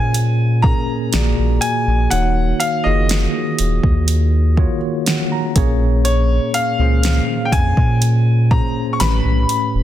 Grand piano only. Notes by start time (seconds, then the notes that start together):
Already playing: G#5
0.62 A#5
1.61 G#5
2.10 F#5
2.60 F5
2.84 D#5
6.05 C#5
6.54 F5
7.45 G5
7.52 G#5
8.51 A#5
8.93 C#6
9.00 B5